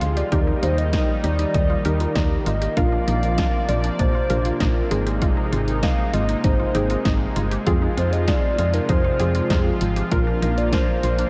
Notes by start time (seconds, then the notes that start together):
Already playing: C3 F3 G#3 F4 F5
0.01 D2 F4, closed hi-hat
0.17 G4 D5, closed hi-hat
0.32 D#2 D#3 G3 A#3 D#4 G4 A#4, kick, closed hi-hat
0.47 D#4
0.63 D#2 F4 C5, closed hi-hat
0.78 D#5, closed hi-hat
0.93 D#4, kick, snare, closed hi-hat
1.24 D#2 G4 D5, closed hi-hat
1.39 D#4, closed hi-hat
1.54 D#2 D#4, kick, closed hi-hat
1.70 F4
1.85 D#2 D#4 G4 A#4, closed hi-hat
2.00 F4, closed hi-hat
2.15 D#2 D#4, kick, snare, closed hi-hat
2.46 G#1 F4 D#5, closed hi-hat
2.61 G4, closed hi-hat
2.77 A#1 C3 F3 D4 F4 A#4 D5 F5, kick, closed hi-hat
2.92 D4
3.07 A#1 D#4, closed hi-hat
3.23 closed hi-hat
3.38 D4, kick, snare, closed hi-hat
3.69 A#1 F4 D5, closed hi-hat
3.84 D4, closed hi-hat
3.99 A#1 D4 C5, kick, closed hi-hat
4.15 F4
4.30 A#1 D4 F4 G4 A#4, closed hi-hat
4.45 F4, closed hi-hat
4.60 A#1 D#4 A#4, kick, snare, closed hi-hat
4.91 G#1 G#3 C4 D#4 F4 G#4, closed hi-hat
5.06 G4, closed hi-hat
5.22 F4, kick, closed hi-hat
5.37 D#4
5.52 G#1 F4, closed hi-hat
5.68 closed hi-hat
5.83 D#4 F5, kick, snare, closed hi-hat
6.14 G#1 F4 D#5, closed hi-hat
6.29 D#4, closed hi-hat
6.44 G#1 D#4 C5, kick, closed hi-hat
6.59 F4
6.75 G#1 C4 D#4 G4 G#4, closed hi-hat
6.90 F4, closed hi-hat
7.05 G#1 D#4, kick, snare, closed hi-hat
7.36 G1 F4, closed hi-hat
7.51 G4, closed hi-hat
7.67 F2 C3 F3 C4 F4 G#4, kick, closed hi-hat
7.82 D#4
7.97 F2 F4 C5, closed hi-hat
8.12 D#5, closed hi-hat
8.28 D#4 D5, kick, snare, closed hi-hat
8.58 F2 F4, closed hi-hat
8.74 D#4 A#4, closed hi-hat
8.89 F2 D#4 C5, kick, closed hi-hat
9.04 F4
9.20 F2 C4 F4 G4 G#4, closed hi-hat
9.35 F4, closed hi-hat
9.50 F2 D#4, kick, snare, closed hi-hat
9.81 G#1 F4, closed hi-hat
9.96 G4, closed hi-hat
10.12 A#1 A#2 A#3 D4 F4 A#4, kick, closed hi-hat
10.27 D4
10.42 A#1 D#4 A#4, closed hi-hat
10.58 D5, closed hi-hat
10.73 D4 C5, kick, snare, closed hi-hat
11.03 A#1 F4, closed hi-hat
11.19 D4, closed hi-hat